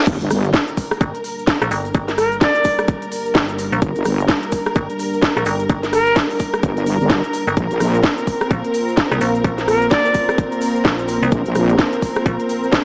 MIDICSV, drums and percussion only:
0, 0, Header, 1, 2, 480
1, 0, Start_track
1, 0, Key_signature, -2, "minor"
1, 0, Tempo, 468750
1, 72, Time_signature, 4, 2, 24, 8
1, 13149, End_track
2, 0, Start_track
2, 0, Title_t, "Drums"
2, 71, Note_on_c, 9, 69, 51
2, 72, Note_on_c, 9, 36, 121
2, 72, Note_on_c, 9, 42, 82
2, 72, Note_on_c, 9, 49, 104
2, 173, Note_off_c, 9, 69, 0
2, 174, Note_off_c, 9, 42, 0
2, 174, Note_off_c, 9, 49, 0
2, 175, Note_off_c, 9, 36, 0
2, 215, Note_on_c, 9, 42, 56
2, 216, Note_on_c, 9, 69, 28
2, 310, Note_off_c, 9, 69, 0
2, 310, Note_on_c, 9, 69, 91
2, 313, Note_on_c, 9, 37, 68
2, 313, Note_on_c, 9, 46, 110
2, 317, Note_off_c, 9, 42, 0
2, 412, Note_off_c, 9, 69, 0
2, 415, Note_off_c, 9, 37, 0
2, 415, Note_off_c, 9, 46, 0
2, 455, Note_on_c, 9, 42, 38
2, 455, Note_on_c, 9, 69, 39
2, 549, Note_on_c, 9, 38, 126
2, 552, Note_off_c, 9, 42, 0
2, 552, Note_on_c, 9, 36, 123
2, 552, Note_on_c, 9, 42, 84
2, 555, Note_off_c, 9, 69, 0
2, 555, Note_on_c, 9, 69, 53
2, 651, Note_off_c, 9, 38, 0
2, 654, Note_off_c, 9, 42, 0
2, 655, Note_off_c, 9, 36, 0
2, 657, Note_off_c, 9, 69, 0
2, 695, Note_on_c, 9, 42, 56
2, 695, Note_on_c, 9, 69, 27
2, 791, Note_off_c, 9, 69, 0
2, 791, Note_on_c, 9, 69, 99
2, 792, Note_on_c, 9, 36, 62
2, 792, Note_on_c, 9, 46, 105
2, 797, Note_off_c, 9, 42, 0
2, 893, Note_off_c, 9, 69, 0
2, 894, Note_off_c, 9, 46, 0
2, 895, Note_off_c, 9, 36, 0
2, 935, Note_on_c, 9, 37, 82
2, 939, Note_on_c, 9, 69, 35
2, 1030, Note_off_c, 9, 69, 0
2, 1030, Note_on_c, 9, 69, 53
2, 1032, Note_on_c, 9, 36, 124
2, 1032, Note_on_c, 9, 42, 86
2, 1038, Note_off_c, 9, 37, 0
2, 1132, Note_off_c, 9, 69, 0
2, 1134, Note_off_c, 9, 36, 0
2, 1135, Note_off_c, 9, 42, 0
2, 1174, Note_on_c, 9, 69, 27
2, 1175, Note_on_c, 9, 42, 55
2, 1272, Note_on_c, 9, 46, 106
2, 1277, Note_off_c, 9, 42, 0
2, 1277, Note_off_c, 9, 69, 0
2, 1277, Note_on_c, 9, 69, 89
2, 1374, Note_off_c, 9, 46, 0
2, 1379, Note_off_c, 9, 69, 0
2, 1422, Note_on_c, 9, 69, 40
2, 1509, Note_on_c, 9, 38, 127
2, 1511, Note_on_c, 9, 42, 85
2, 1512, Note_on_c, 9, 36, 125
2, 1514, Note_off_c, 9, 69, 0
2, 1514, Note_on_c, 9, 69, 57
2, 1611, Note_off_c, 9, 38, 0
2, 1614, Note_off_c, 9, 36, 0
2, 1614, Note_off_c, 9, 42, 0
2, 1616, Note_off_c, 9, 69, 0
2, 1654, Note_on_c, 9, 69, 27
2, 1655, Note_on_c, 9, 37, 81
2, 1655, Note_on_c, 9, 42, 55
2, 1752, Note_on_c, 9, 46, 107
2, 1753, Note_off_c, 9, 69, 0
2, 1753, Note_on_c, 9, 69, 103
2, 1758, Note_off_c, 9, 37, 0
2, 1758, Note_off_c, 9, 42, 0
2, 1854, Note_off_c, 9, 46, 0
2, 1855, Note_off_c, 9, 69, 0
2, 1896, Note_on_c, 9, 42, 38
2, 1905, Note_on_c, 9, 69, 42
2, 1986, Note_off_c, 9, 69, 0
2, 1986, Note_on_c, 9, 69, 52
2, 1992, Note_on_c, 9, 36, 121
2, 1993, Note_off_c, 9, 42, 0
2, 1993, Note_on_c, 9, 42, 79
2, 2088, Note_off_c, 9, 69, 0
2, 2094, Note_off_c, 9, 36, 0
2, 2096, Note_off_c, 9, 42, 0
2, 2133, Note_on_c, 9, 38, 39
2, 2135, Note_on_c, 9, 69, 27
2, 2136, Note_on_c, 9, 42, 55
2, 2232, Note_on_c, 9, 37, 65
2, 2232, Note_on_c, 9, 46, 109
2, 2233, Note_off_c, 9, 69, 0
2, 2233, Note_on_c, 9, 69, 88
2, 2235, Note_off_c, 9, 38, 0
2, 2238, Note_off_c, 9, 42, 0
2, 2335, Note_off_c, 9, 37, 0
2, 2335, Note_off_c, 9, 46, 0
2, 2336, Note_off_c, 9, 69, 0
2, 2375, Note_on_c, 9, 42, 37
2, 2380, Note_on_c, 9, 69, 36
2, 2470, Note_on_c, 9, 38, 127
2, 2472, Note_off_c, 9, 42, 0
2, 2472, Note_on_c, 9, 36, 127
2, 2472, Note_on_c, 9, 42, 81
2, 2477, Note_off_c, 9, 69, 0
2, 2477, Note_on_c, 9, 69, 54
2, 2572, Note_off_c, 9, 38, 0
2, 2574, Note_off_c, 9, 36, 0
2, 2575, Note_off_c, 9, 42, 0
2, 2579, Note_off_c, 9, 69, 0
2, 2606, Note_on_c, 9, 69, 28
2, 2615, Note_on_c, 9, 42, 56
2, 2707, Note_off_c, 9, 69, 0
2, 2707, Note_on_c, 9, 69, 95
2, 2712, Note_on_c, 9, 36, 65
2, 2712, Note_on_c, 9, 46, 109
2, 2717, Note_off_c, 9, 42, 0
2, 2809, Note_off_c, 9, 69, 0
2, 2814, Note_off_c, 9, 36, 0
2, 2814, Note_off_c, 9, 46, 0
2, 2848, Note_on_c, 9, 69, 39
2, 2854, Note_on_c, 9, 37, 77
2, 2949, Note_off_c, 9, 69, 0
2, 2949, Note_on_c, 9, 69, 53
2, 2950, Note_on_c, 9, 42, 84
2, 2952, Note_on_c, 9, 36, 121
2, 2957, Note_off_c, 9, 37, 0
2, 3051, Note_off_c, 9, 69, 0
2, 3053, Note_off_c, 9, 42, 0
2, 3054, Note_off_c, 9, 36, 0
2, 3094, Note_on_c, 9, 42, 56
2, 3100, Note_on_c, 9, 69, 29
2, 3192, Note_on_c, 9, 46, 114
2, 3194, Note_off_c, 9, 69, 0
2, 3194, Note_on_c, 9, 69, 89
2, 3196, Note_off_c, 9, 42, 0
2, 3294, Note_off_c, 9, 46, 0
2, 3296, Note_off_c, 9, 69, 0
2, 3328, Note_on_c, 9, 69, 42
2, 3429, Note_on_c, 9, 38, 127
2, 3431, Note_off_c, 9, 69, 0
2, 3432, Note_on_c, 9, 36, 124
2, 3432, Note_on_c, 9, 42, 81
2, 3433, Note_on_c, 9, 69, 54
2, 3532, Note_off_c, 9, 38, 0
2, 3534, Note_off_c, 9, 36, 0
2, 3534, Note_off_c, 9, 42, 0
2, 3535, Note_off_c, 9, 69, 0
2, 3574, Note_on_c, 9, 42, 52
2, 3578, Note_on_c, 9, 69, 25
2, 3671, Note_on_c, 9, 46, 112
2, 3673, Note_off_c, 9, 69, 0
2, 3673, Note_on_c, 9, 69, 103
2, 3676, Note_off_c, 9, 42, 0
2, 3773, Note_off_c, 9, 46, 0
2, 3775, Note_off_c, 9, 69, 0
2, 3814, Note_on_c, 9, 42, 39
2, 3818, Note_on_c, 9, 69, 43
2, 3911, Note_off_c, 9, 42, 0
2, 3911, Note_off_c, 9, 69, 0
2, 3911, Note_on_c, 9, 36, 127
2, 3911, Note_on_c, 9, 42, 75
2, 3911, Note_on_c, 9, 69, 61
2, 4013, Note_off_c, 9, 42, 0
2, 4013, Note_off_c, 9, 69, 0
2, 4014, Note_off_c, 9, 36, 0
2, 4046, Note_on_c, 9, 69, 28
2, 4053, Note_on_c, 9, 42, 53
2, 4144, Note_off_c, 9, 69, 0
2, 4144, Note_on_c, 9, 69, 97
2, 4151, Note_on_c, 9, 37, 64
2, 4151, Note_on_c, 9, 46, 114
2, 4156, Note_off_c, 9, 42, 0
2, 4246, Note_off_c, 9, 69, 0
2, 4253, Note_off_c, 9, 37, 0
2, 4253, Note_off_c, 9, 46, 0
2, 4294, Note_on_c, 9, 42, 36
2, 4302, Note_on_c, 9, 69, 45
2, 4388, Note_on_c, 9, 38, 124
2, 4390, Note_off_c, 9, 42, 0
2, 4390, Note_on_c, 9, 42, 80
2, 4392, Note_on_c, 9, 36, 127
2, 4394, Note_off_c, 9, 69, 0
2, 4394, Note_on_c, 9, 69, 59
2, 4490, Note_off_c, 9, 38, 0
2, 4493, Note_off_c, 9, 42, 0
2, 4494, Note_off_c, 9, 36, 0
2, 4496, Note_off_c, 9, 69, 0
2, 4533, Note_on_c, 9, 69, 29
2, 4535, Note_on_c, 9, 42, 54
2, 4624, Note_off_c, 9, 69, 0
2, 4624, Note_on_c, 9, 69, 109
2, 4631, Note_on_c, 9, 36, 66
2, 4631, Note_on_c, 9, 46, 110
2, 4637, Note_off_c, 9, 42, 0
2, 4727, Note_off_c, 9, 69, 0
2, 4734, Note_off_c, 9, 36, 0
2, 4734, Note_off_c, 9, 46, 0
2, 4771, Note_on_c, 9, 69, 41
2, 4775, Note_on_c, 9, 37, 75
2, 4865, Note_off_c, 9, 69, 0
2, 4865, Note_on_c, 9, 69, 54
2, 4872, Note_on_c, 9, 36, 127
2, 4872, Note_on_c, 9, 42, 81
2, 4878, Note_off_c, 9, 37, 0
2, 4967, Note_off_c, 9, 69, 0
2, 4974, Note_off_c, 9, 36, 0
2, 4974, Note_off_c, 9, 42, 0
2, 5015, Note_on_c, 9, 42, 52
2, 5016, Note_on_c, 9, 69, 29
2, 5113, Note_on_c, 9, 46, 114
2, 5114, Note_off_c, 9, 69, 0
2, 5114, Note_on_c, 9, 69, 102
2, 5117, Note_off_c, 9, 42, 0
2, 5215, Note_off_c, 9, 46, 0
2, 5217, Note_off_c, 9, 69, 0
2, 5258, Note_on_c, 9, 69, 46
2, 5349, Note_off_c, 9, 69, 0
2, 5349, Note_on_c, 9, 38, 123
2, 5349, Note_on_c, 9, 69, 60
2, 5352, Note_on_c, 9, 36, 127
2, 5352, Note_on_c, 9, 42, 79
2, 5452, Note_off_c, 9, 38, 0
2, 5452, Note_off_c, 9, 69, 0
2, 5454, Note_off_c, 9, 36, 0
2, 5455, Note_off_c, 9, 42, 0
2, 5496, Note_on_c, 9, 37, 77
2, 5496, Note_on_c, 9, 42, 52
2, 5497, Note_on_c, 9, 69, 28
2, 5586, Note_off_c, 9, 69, 0
2, 5586, Note_on_c, 9, 69, 94
2, 5593, Note_on_c, 9, 46, 110
2, 5598, Note_off_c, 9, 37, 0
2, 5598, Note_off_c, 9, 42, 0
2, 5689, Note_off_c, 9, 69, 0
2, 5695, Note_off_c, 9, 46, 0
2, 5728, Note_on_c, 9, 69, 45
2, 5735, Note_on_c, 9, 42, 38
2, 5830, Note_off_c, 9, 69, 0
2, 5830, Note_on_c, 9, 69, 50
2, 5832, Note_off_c, 9, 42, 0
2, 5832, Note_on_c, 9, 36, 127
2, 5832, Note_on_c, 9, 42, 74
2, 5932, Note_off_c, 9, 69, 0
2, 5934, Note_off_c, 9, 36, 0
2, 5934, Note_off_c, 9, 42, 0
2, 5972, Note_on_c, 9, 38, 37
2, 5975, Note_on_c, 9, 42, 50
2, 5976, Note_on_c, 9, 69, 29
2, 6072, Note_off_c, 9, 69, 0
2, 6072, Note_on_c, 9, 37, 64
2, 6072, Note_on_c, 9, 46, 114
2, 6072, Note_on_c, 9, 69, 86
2, 6075, Note_off_c, 9, 38, 0
2, 6077, Note_off_c, 9, 42, 0
2, 6174, Note_off_c, 9, 37, 0
2, 6174, Note_off_c, 9, 46, 0
2, 6174, Note_off_c, 9, 69, 0
2, 6210, Note_on_c, 9, 69, 39
2, 6214, Note_on_c, 9, 42, 36
2, 6308, Note_on_c, 9, 38, 116
2, 6311, Note_off_c, 9, 42, 0
2, 6311, Note_on_c, 9, 42, 77
2, 6312, Note_off_c, 9, 69, 0
2, 6312, Note_on_c, 9, 36, 127
2, 6314, Note_on_c, 9, 69, 53
2, 6410, Note_off_c, 9, 38, 0
2, 6413, Note_off_c, 9, 42, 0
2, 6414, Note_off_c, 9, 36, 0
2, 6417, Note_off_c, 9, 69, 0
2, 6453, Note_on_c, 9, 46, 65
2, 6454, Note_on_c, 9, 69, 26
2, 6546, Note_off_c, 9, 69, 0
2, 6546, Note_on_c, 9, 69, 91
2, 6550, Note_off_c, 9, 46, 0
2, 6550, Note_on_c, 9, 46, 110
2, 6552, Note_on_c, 9, 36, 64
2, 6649, Note_off_c, 9, 69, 0
2, 6653, Note_off_c, 9, 46, 0
2, 6654, Note_off_c, 9, 36, 0
2, 6690, Note_on_c, 9, 69, 38
2, 6693, Note_on_c, 9, 37, 80
2, 6791, Note_off_c, 9, 69, 0
2, 6791, Note_on_c, 9, 42, 78
2, 6791, Note_on_c, 9, 69, 51
2, 6792, Note_on_c, 9, 36, 126
2, 6796, Note_off_c, 9, 37, 0
2, 6893, Note_off_c, 9, 42, 0
2, 6894, Note_off_c, 9, 36, 0
2, 6894, Note_off_c, 9, 69, 0
2, 6931, Note_on_c, 9, 69, 25
2, 6933, Note_on_c, 9, 42, 51
2, 7029, Note_on_c, 9, 46, 116
2, 7030, Note_off_c, 9, 69, 0
2, 7030, Note_on_c, 9, 69, 97
2, 7036, Note_off_c, 9, 42, 0
2, 7132, Note_off_c, 9, 46, 0
2, 7132, Note_off_c, 9, 69, 0
2, 7176, Note_on_c, 9, 69, 45
2, 7268, Note_on_c, 9, 38, 121
2, 7270, Note_on_c, 9, 42, 78
2, 7271, Note_on_c, 9, 36, 123
2, 7273, Note_off_c, 9, 69, 0
2, 7273, Note_on_c, 9, 69, 56
2, 7370, Note_off_c, 9, 38, 0
2, 7373, Note_off_c, 9, 42, 0
2, 7374, Note_off_c, 9, 36, 0
2, 7375, Note_off_c, 9, 69, 0
2, 7412, Note_on_c, 9, 69, 29
2, 7414, Note_on_c, 9, 42, 50
2, 7510, Note_on_c, 9, 46, 111
2, 7515, Note_off_c, 9, 69, 0
2, 7516, Note_off_c, 9, 42, 0
2, 7517, Note_on_c, 9, 69, 101
2, 7612, Note_off_c, 9, 46, 0
2, 7619, Note_off_c, 9, 69, 0
2, 7653, Note_on_c, 9, 42, 36
2, 7657, Note_on_c, 9, 69, 39
2, 7749, Note_off_c, 9, 69, 0
2, 7749, Note_on_c, 9, 69, 52
2, 7750, Note_off_c, 9, 42, 0
2, 7750, Note_on_c, 9, 42, 77
2, 7751, Note_on_c, 9, 36, 123
2, 7852, Note_off_c, 9, 42, 0
2, 7852, Note_off_c, 9, 69, 0
2, 7854, Note_off_c, 9, 36, 0
2, 7894, Note_on_c, 9, 42, 51
2, 7897, Note_on_c, 9, 69, 27
2, 7990, Note_on_c, 9, 37, 69
2, 7990, Note_on_c, 9, 46, 108
2, 7993, Note_off_c, 9, 69, 0
2, 7993, Note_on_c, 9, 69, 94
2, 7997, Note_off_c, 9, 42, 0
2, 8092, Note_off_c, 9, 37, 0
2, 8092, Note_off_c, 9, 46, 0
2, 8095, Note_off_c, 9, 69, 0
2, 8133, Note_on_c, 9, 42, 37
2, 8137, Note_on_c, 9, 69, 40
2, 8228, Note_on_c, 9, 38, 116
2, 8229, Note_off_c, 9, 69, 0
2, 8229, Note_on_c, 9, 69, 55
2, 8231, Note_off_c, 9, 42, 0
2, 8231, Note_on_c, 9, 36, 124
2, 8231, Note_on_c, 9, 42, 77
2, 8330, Note_off_c, 9, 38, 0
2, 8331, Note_off_c, 9, 69, 0
2, 8333, Note_off_c, 9, 42, 0
2, 8334, Note_off_c, 9, 36, 0
2, 8375, Note_on_c, 9, 42, 52
2, 8382, Note_on_c, 9, 69, 28
2, 8471, Note_off_c, 9, 69, 0
2, 8471, Note_on_c, 9, 36, 62
2, 8471, Note_on_c, 9, 46, 107
2, 8471, Note_on_c, 9, 69, 91
2, 8477, Note_off_c, 9, 42, 0
2, 8573, Note_off_c, 9, 46, 0
2, 8573, Note_off_c, 9, 69, 0
2, 8574, Note_off_c, 9, 36, 0
2, 8611, Note_on_c, 9, 69, 37
2, 8613, Note_on_c, 9, 37, 81
2, 8711, Note_on_c, 9, 36, 121
2, 8711, Note_on_c, 9, 42, 79
2, 8712, Note_off_c, 9, 69, 0
2, 8712, Note_on_c, 9, 69, 50
2, 8716, Note_off_c, 9, 37, 0
2, 8813, Note_off_c, 9, 36, 0
2, 8813, Note_off_c, 9, 42, 0
2, 8814, Note_off_c, 9, 69, 0
2, 8853, Note_on_c, 9, 42, 53
2, 8853, Note_on_c, 9, 69, 25
2, 8950, Note_off_c, 9, 69, 0
2, 8950, Note_on_c, 9, 46, 106
2, 8950, Note_on_c, 9, 69, 96
2, 8955, Note_off_c, 9, 42, 0
2, 9052, Note_off_c, 9, 46, 0
2, 9053, Note_off_c, 9, 69, 0
2, 9093, Note_on_c, 9, 69, 43
2, 9184, Note_off_c, 9, 69, 0
2, 9184, Note_on_c, 9, 69, 58
2, 9188, Note_on_c, 9, 38, 117
2, 9190, Note_on_c, 9, 42, 78
2, 9191, Note_on_c, 9, 36, 124
2, 9286, Note_off_c, 9, 69, 0
2, 9290, Note_off_c, 9, 38, 0
2, 9293, Note_off_c, 9, 36, 0
2, 9293, Note_off_c, 9, 42, 0
2, 9333, Note_on_c, 9, 37, 81
2, 9333, Note_on_c, 9, 42, 51
2, 9334, Note_on_c, 9, 69, 26
2, 9430, Note_on_c, 9, 46, 107
2, 9431, Note_off_c, 9, 69, 0
2, 9431, Note_on_c, 9, 69, 89
2, 9436, Note_off_c, 9, 37, 0
2, 9436, Note_off_c, 9, 42, 0
2, 9532, Note_off_c, 9, 46, 0
2, 9533, Note_off_c, 9, 69, 0
2, 9574, Note_on_c, 9, 42, 37
2, 9578, Note_on_c, 9, 69, 43
2, 9671, Note_off_c, 9, 42, 0
2, 9671, Note_on_c, 9, 36, 117
2, 9671, Note_on_c, 9, 42, 79
2, 9677, Note_off_c, 9, 69, 0
2, 9677, Note_on_c, 9, 69, 49
2, 9773, Note_off_c, 9, 36, 0
2, 9773, Note_off_c, 9, 42, 0
2, 9780, Note_off_c, 9, 69, 0
2, 9811, Note_on_c, 9, 38, 35
2, 9811, Note_on_c, 9, 69, 26
2, 9814, Note_on_c, 9, 42, 52
2, 9911, Note_on_c, 9, 37, 70
2, 9911, Note_on_c, 9, 46, 102
2, 9914, Note_off_c, 9, 38, 0
2, 9914, Note_off_c, 9, 69, 0
2, 9915, Note_on_c, 9, 69, 87
2, 9917, Note_off_c, 9, 42, 0
2, 10013, Note_off_c, 9, 37, 0
2, 10013, Note_off_c, 9, 46, 0
2, 10017, Note_off_c, 9, 69, 0
2, 10053, Note_on_c, 9, 69, 36
2, 10055, Note_on_c, 9, 42, 37
2, 10137, Note_off_c, 9, 69, 0
2, 10137, Note_on_c, 9, 69, 53
2, 10149, Note_on_c, 9, 38, 117
2, 10151, Note_on_c, 9, 36, 121
2, 10152, Note_off_c, 9, 42, 0
2, 10152, Note_on_c, 9, 42, 77
2, 10239, Note_off_c, 9, 69, 0
2, 10252, Note_off_c, 9, 38, 0
2, 10254, Note_off_c, 9, 36, 0
2, 10254, Note_off_c, 9, 42, 0
2, 10295, Note_on_c, 9, 42, 55
2, 10302, Note_on_c, 9, 69, 26
2, 10383, Note_off_c, 9, 69, 0
2, 10383, Note_on_c, 9, 69, 99
2, 10391, Note_on_c, 9, 36, 62
2, 10391, Note_on_c, 9, 46, 100
2, 10397, Note_off_c, 9, 42, 0
2, 10486, Note_off_c, 9, 69, 0
2, 10494, Note_off_c, 9, 36, 0
2, 10494, Note_off_c, 9, 46, 0
2, 10535, Note_on_c, 9, 37, 81
2, 10537, Note_on_c, 9, 69, 38
2, 10628, Note_off_c, 9, 69, 0
2, 10628, Note_on_c, 9, 69, 49
2, 10631, Note_on_c, 9, 36, 116
2, 10632, Note_on_c, 9, 42, 80
2, 10638, Note_off_c, 9, 37, 0
2, 10731, Note_off_c, 9, 69, 0
2, 10734, Note_off_c, 9, 36, 0
2, 10734, Note_off_c, 9, 42, 0
2, 10770, Note_on_c, 9, 69, 25
2, 10775, Note_on_c, 9, 42, 54
2, 10865, Note_off_c, 9, 69, 0
2, 10865, Note_on_c, 9, 69, 83
2, 10871, Note_on_c, 9, 46, 107
2, 10877, Note_off_c, 9, 42, 0
2, 10967, Note_off_c, 9, 69, 0
2, 10974, Note_off_c, 9, 46, 0
2, 11011, Note_on_c, 9, 69, 42
2, 11109, Note_on_c, 9, 38, 118
2, 11111, Note_off_c, 9, 69, 0
2, 11111, Note_on_c, 9, 42, 81
2, 11111, Note_on_c, 9, 69, 50
2, 11112, Note_on_c, 9, 36, 115
2, 11211, Note_off_c, 9, 38, 0
2, 11213, Note_off_c, 9, 69, 0
2, 11214, Note_off_c, 9, 36, 0
2, 11214, Note_off_c, 9, 42, 0
2, 11255, Note_on_c, 9, 42, 54
2, 11261, Note_on_c, 9, 69, 23
2, 11347, Note_off_c, 9, 69, 0
2, 11347, Note_on_c, 9, 69, 95
2, 11352, Note_on_c, 9, 46, 107
2, 11357, Note_off_c, 9, 42, 0
2, 11449, Note_off_c, 9, 69, 0
2, 11455, Note_off_c, 9, 46, 0
2, 11495, Note_on_c, 9, 42, 37
2, 11498, Note_on_c, 9, 69, 41
2, 11587, Note_off_c, 9, 69, 0
2, 11587, Note_on_c, 9, 69, 48
2, 11591, Note_off_c, 9, 42, 0
2, 11591, Note_on_c, 9, 42, 82
2, 11592, Note_on_c, 9, 36, 115
2, 11690, Note_off_c, 9, 69, 0
2, 11693, Note_off_c, 9, 42, 0
2, 11694, Note_off_c, 9, 36, 0
2, 11727, Note_on_c, 9, 69, 27
2, 11735, Note_on_c, 9, 42, 57
2, 11826, Note_off_c, 9, 69, 0
2, 11826, Note_on_c, 9, 69, 88
2, 11831, Note_on_c, 9, 37, 70
2, 11831, Note_on_c, 9, 46, 101
2, 11837, Note_off_c, 9, 42, 0
2, 11928, Note_off_c, 9, 69, 0
2, 11934, Note_off_c, 9, 37, 0
2, 11934, Note_off_c, 9, 46, 0
2, 11973, Note_on_c, 9, 69, 35
2, 11975, Note_on_c, 9, 42, 40
2, 12069, Note_on_c, 9, 38, 113
2, 12070, Note_off_c, 9, 69, 0
2, 12070, Note_on_c, 9, 69, 52
2, 12072, Note_off_c, 9, 42, 0
2, 12072, Note_on_c, 9, 36, 120
2, 12072, Note_on_c, 9, 42, 83
2, 12172, Note_off_c, 9, 38, 0
2, 12173, Note_off_c, 9, 69, 0
2, 12174, Note_off_c, 9, 42, 0
2, 12175, Note_off_c, 9, 36, 0
2, 12215, Note_on_c, 9, 42, 57
2, 12217, Note_on_c, 9, 69, 25
2, 12312, Note_on_c, 9, 36, 61
2, 12312, Note_on_c, 9, 46, 103
2, 12317, Note_off_c, 9, 42, 0
2, 12317, Note_off_c, 9, 69, 0
2, 12317, Note_on_c, 9, 69, 83
2, 12414, Note_off_c, 9, 46, 0
2, 12415, Note_off_c, 9, 36, 0
2, 12419, Note_off_c, 9, 69, 0
2, 12448, Note_on_c, 9, 69, 36
2, 12456, Note_on_c, 9, 37, 83
2, 12551, Note_off_c, 9, 69, 0
2, 12552, Note_on_c, 9, 36, 114
2, 12553, Note_on_c, 9, 42, 83
2, 12554, Note_on_c, 9, 69, 52
2, 12558, Note_off_c, 9, 37, 0
2, 12655, Note_off_c, 9, 36, 0
2, 12655, Note_off_c, 9, 42, 0
2, 12657, Note_off_c, 9, 69, 0
2, 12690, Note_on_c, 9, 69, 27
2, 12695, Note_on_c, 9, 42, 56
2, 12792, Note_off_c, 9, 69, 0
2, 12793, Note_on_c, 9, 46, 102
2, 12794, Note_on_c, 9, 69, 83
2, 12798, Note_off_c, 9, 42, 0
2, 12895, Note_off_c, 9, 46, 0
2, 12897, Note_off_c, 9, 69, 0
2, 12940, Note_on_c, 9, 69, 37
2, 13030, Note_on_c, 9, 38, 119
2, 13032, Note_on_c, 9, 36, 121
2, 13033, Note_on_c, 9, 42, 84
2, 13037, Note_off_c, 9, 69, 0
2, 13037, Note_on_c, 9, 69, 52
2, 13132, Note_off_c, 9, 38, 0
2, 13134, Note_off_c, 9, 36, 0
2, 13135, Note_off_c, 9, 42, 0
2, 13139, Note_off_c, 9, 69, 0
2, 13149, End_track
0, 0, End_of_file